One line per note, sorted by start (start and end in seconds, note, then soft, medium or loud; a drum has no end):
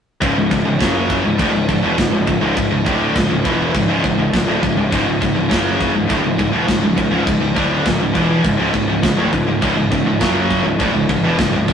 0.21 0.35 C#1 medium
0.21 0.35 C#2 medium
0.21 0.35 G#2 loud
0.21 kick loud
0.21 crash medium
0.36 0.50 C#1 medium
0.36 0.50 C#2 medium
0.36 0.50 G#2 medium
0.51 0.65 C#1 medium
0.51 0.64 C#2 medium
0.51 0.64 G#2 medium
0.51 kick loud
0.51 crash medium
0.65 0.79 C#1 medium
0.65 0.80 C#2 medium
0.65 0.80 G#2 medium
0.80 1.21 F#1 loud
0.80 1.24 F#2 medium
0.80 1.24 C#3 medium
0.80 1.24 F#3 medium
0.80 kick loud
0.80 snare loud
0.80 crash medium
1.10 kick medium
1.10 crash medium
1.24 1.39 C#1 medium
1.24 1.38 C#2 medium
1.24 1.39 G#2 medium
1.38 1.53 D1 medium
1.38 1.53 D2 medium
1.38 1.53 A2 loud
1.38 kick loud
1.38 crash medium
1.53 1.68 C#1 medium
1.53 1.68 C#2 medium
1.53 1.68 G#2 medium
1.69 1.83 C#1 medium
1.69 1.83 C#2 medium
1.69 1.83 G#2 medium
1.69 kick medium
1.69 crash medium
1.83 1.97 E1 loud
1.83 1.97 E2 medium
1.83 1.97 B2 loud
1.97 2.11 C#1 medium
1.97 2.11 C#2 medium
1.97 2.12 G#2 medium
1.97 kick loud
1.97 snare loud
1.97 crash medium
2.12 2.26 C#1 medium
2.12 2.25 C#2 medium
2.12 2.26 G#2 medium
2.27 2.41 C#1 medium
2.27 2.40 C#2 medium
2.27 2.41 G#2 medium
2.27 kick medium
2.27 crash medium
2.41 2.55 C#1 loud
2.41 2.55 C#2 loud
2.41 2.55 G#2 loud
2.56 2.70 C#1 medium
2.56 2.69 C#2 medium
2.56 2.70 G#2 medium
2.56 kick loud
2.56 crash medium
2.70 2.84 C#1 medium
2.70 2.85 C#2 medium
2.70 2.86 G#2 medium
2.86 3.14 D1 medium
2.86 3.14 D2 medium
2.86 3.15 A2 loud
2.86 3.15 D3 loud
2.86 kick loud
2.86 crash medium
3.15 3.29 C#1 medium
3.15 3.29 C#2 medium
3.15 3.29 G#2 medium
3.15 kick loud
3.15 snare loud
3.15 crash medium
3.30 3.44 C#1 medium
3.30 3.44 C#2 medium
3.30 3.44 G#2 medium
3.44 3.72 E1 medium
3.44 3.73 E2 medium
3.44 3.73 B2 loud
3.44 3.74 E3 loud
3.44 kick medium
3.44 crash medium
3.73 3.87 C#1 medium
3.73 3.87 C#2 medium
3.73 3.88 G#2 medium
3.73 kick loud
3.73 crash medium
3.88 4.02 C#1 loud
3.88 4.02 C#2 medium
3.88 4.03 G#2 loud
4.04 4.17 C#1 medium
4.04 4.17 C#2 medium
4.04 4.17 G#2 medium
4.04 kick medium
4.04 crash medium
4.18 4.32 C#1 medium
4.18 4.32 C#2 medium
4.18 4.32 G#2 medium
4.33 4.46 C#1 medium
4.33 4.46 C#2 medium
4.33 4.47 G#2 medium
4.33 kick loud
4.33 snare loud
4.33 crash medium
4.46 4.61 D1 medium
4.46 4.61 D2 loud
4.46 4.61 A2 loud
4.62 4.76 C#1 medium
4.62 4.76 C#2 medium
4.62 4.76 G#2 medium
4.62 kick medium
4.62 crash medium
4.77 4.91 C#1 medium
4.77 4.90 C#2 medium
4.77 4.90 G#2 medium
4.91 5.06 C#1 loud
4.91 5.05 C#2 medium
4.91 5.06 G#2 loud
4.91 kick loud
4.91 crash medium
5.06 5.20 C#1 medium
5.06 5.19 C#2 medium
5.06 5.20 G#2 medium
5.20 5.35 C#1 medium
5.20 5.33 C#2 medium
5.20 5.34 G#2 medium
5.20 kick loud
5.20 crash medium
5.35 5.50 C#1 medium
5.35 5.48 C#2 medium
5.35 5.49 G#2 medium
5.49 5.92 F#1 loud
5.49 5.93 F#2 medium
5.49 5.93 C#3 medium
5.49 5.94 F#3 medium
5.49 kick loud
5.49 snare loud
5.49 crash medium
5.81 kick medium
5.81 crash medium
5.94 6.09 C#1 medium
5.94 6.07 C#2 medium
5.94 6.08 G#2 medium
6.07 6.23 D1 loud
6.07 6.22 D2 loud
6.07 6.23 A2 loud
6.07 kick loud
6.07 crash medium
6.23 6.38 C#1 medium
6.23 6.37 C#2 medium
6.23 6.37 G#2 medium
6.38 6.53 C#1 medium
6.38 6.51 C#2 medium
6.38 6.52 G#2 medium
6.38 kick medium
6.38 crash medium
6.52 6.67 E1 medium
6.52 6.66 E2 medium
6.52 6.67 B2 medium
6.67 6.82 C#1 medium
6.67 6.80 C#2 medium
6.67 6.81 G#2 medium
6.67 kick loud
6.67 snare loud
6.67 crash medium
6.81 6.97 C#1 medium
6.81 6.95 C#2 medium
6.81 6.96 G#2 medium
6.96 7.11 C#1 medium
6.96 7.09 C#2 medium
6.96 7.10 G#2 medium
6.96 kick medium
6.96 crash medium
7.11 7.25 C#1 loud
7.11 7.24 C#2 medium
7.11 7.25 G#2 loud
7.26 7.40 C#1 medium
7.26 7.39 C#2 medium
7.26 7.39 G#2 medium
7.26 kick loud
7.26 crash medium
7.40 7.55 C#1 medium
7.40 7.54 C#2 medium
7.40 7.55 G#2 medium
7.54 7.84 D1 loud
7.54 7.84 D2 loud
7.54 7.84 A2 loud
7.54 7.84 D3 loud
7.54 kick medium
7.54 crash medium
7.85 8.00 C#1 medium
7.85 7.98 C#2 medium
7.85 7.98 G#2 medium
7.85 kick loud
7.85 snare loud
7.85 crash medium
7.99 8.14 C#1 medium
7.99 8.13 C#2 medium
7.99 8.13 G#2 medium
8.13 8.43 E1 loud
8.13 8.42 E2 loud
8.13 8.43 B2 loud
8.13 8.43 E3 loud
8.13 kick medium
8.13 crash medium
8.43 8.58 C#1 medium
8.43 8.56 C#2 medium
8.43 8.56 G#2 medium
8.43 kick loud
8.43 crash medium
8.57 8.73 C#1 loud
8.57 8.71 C#2 medium
8.57 8.72 G#2 medium
8.73 8.88 C#1 medium
8.73 8.86 C#2 medium
8.73 8.87 G#2 medium
8.73 kick medium
8.73 crash medium
8.87 9.02 C#1 medium
8.87 9.01 C#2 medium
8.87 9.01 G#2 medium
9.02 9.17 C#1 medium
9.02 9.16 C#2 medium
9.02 9.17 G#2 medium
9.02 kick loud
9.02 snare loud
9.02 crash medium
9.17 9.32 D1 medium
9.17 9.31 D2 medium
9.17 9.32 A2 medium
9.32 9.47 C#1 medium
9.32 9.46 C#2 medium
9.32 9.46 G#2 medium
9.32 kick medium
9.32 crash medium
9.47 9.61 C#1 medium
9.47 9.60 C#2 medium
9.47 9.61 G#2 medium
9.61 9.76 C#1 medium
9.61 9.75 C#2 medium
9.61 9.75 G#2 loud
9.61 kick loud
9.61 crash medium
9.76 9.91 C#1 medium
9.76 9.89 C#2 medium
9.76 9.90 G#2 medium
9.91 10.05 C#1 medium
9.91 10.04 C#2 medium
9.91 10.05 G#2 medium
9.91 kick loud
9.91 crash medium
10.06 10.20 C#1 medium
10.06 10.20 C#2 medium
10.06 10.21 G#2 medium
10.20 10.62 F#1 medium
10.20 10.64 F#2 medium
10.20 10.64 C#3 medium
10.20 10.64 F#3 medium
10.20 kick loud
10.20 snare loud
10.20 crash medium
10.50 kick medium
10.50 crash medium
10.64 10.78 C#1 medium
10.64 10.78 C#2 medium
10.64 10.79 G#2 medium
10.79 10.93 D1 medium
10.79 10.93 D2 medium
10.79 10.94 A2 medium
10.79 kick loud
10.79 crash medium
10.94 11.08 C#1 medium
10.94 11.08 C#2 medium
10.94 11.08 G#2 medium
11.09 11.22 C#1 medium
11.09 11.23 C#2 medium
11.09 11.24 G#2 medium
11.09 kick medium
11.09 crash medium
11.23 11.37 E1 loud
11.23 11.38 E2 medium
11.23 11.38 B2 medium
11.39 11.52 C#1 medium
11.39 11.52 C#2 medium
11.39 11.52 G#2 medium
11.39 kick loud
11.39 snare loud
11.39 crash medium
11.53 11.67 C#1 medium
11.53 11.67 C#2 medium
11.53 11.68 G#2 medium
11.68 11.73 C#1 medium
11.68 11.73 C#2 medium
11.68 11.73 G#2 medium
11.68 kick medium
11.68 crash medium